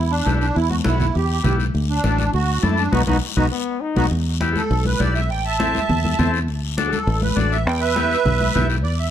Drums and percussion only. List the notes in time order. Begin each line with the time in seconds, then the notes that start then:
0.26 high conga, short guiro
0.41 short guiro
0.56 high conga, long guiro
0.71 high conga
0.84 high conga, short guiro
1.00 low conga, short guiro
1.15 high conga, long guiro
1.44 high conga, low conga, short guiro
1.60 short guiro
1.74 high conga, long guiro
2.04 high conga, short guiro
2.18 high conga, short guiro
2.33 high conga, long guiro
2.63 high conga, short guiro
2.78 short guiro
2.93 high conga, long guiro
3.07 high conga, long guiro
3.37 high conga, long guiro
3.96 high conga, long guiro
4.11 high conga, long guiro
4.41 high conga, short guiro
4.56 high conga, short guiro
4.71 high conga, long guiro
4.85 high conga
5.00 high conga, short guiro
5.15 short guiro
5.30 high conga, long guiro
5.60 high conga, short guiro
5.75 high conga, short guiro
5.89 high conga, low conga, long guiro
6.05 high conga
6.19 high conga, low conga, short guiro
6.34 short guiro
6.48 high conga, long guiro
6.78 high conga, short guiro
6.92 high conga, short guiro
7.07 high conga, long guiro
7.22 high conga
7.37 high conga, short guiro
7.52 short guiro
7.66 high conga, long guiro
7.96 high conga, short guiro
8.11 short guiro
8.25 high conga, low conga, long guiro
8.40 high conga
8.55 high conga, low conga, short guiro
8.70 short guiro
8.85 high conga, long guiro